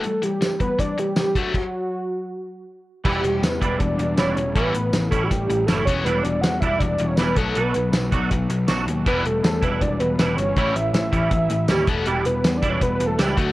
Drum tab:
CC |--------|x-------|x-------|--------|
HH |xxxxxxxx|--------|-xxxxxxx|xxxxxxxx|
TB |--x---x-|--------|--x---x-|--x---x-|
SD |--o---o-|--------|--o---o-|--o---o-|
BD |---oo--o|o-------|o--oo---|o--oo--o|

CC |--------|--------|--------|--------|
HH |xxxxxxxx|xxxxxxxx|xxxxxxxx|xxxxxxxx|
TB |--x---x-|--x---x-|--x---x-|--x---x-|
SD |--o---o-|--o---o-|--o---o-|--o---o-|
BD |---oo--o|---oo---|o--oo---|o--oo--o|

CC |--------|
HH |xxxxxxxx|
TB |--x---x-|
SD |--o---o-|
BD |---oo--o|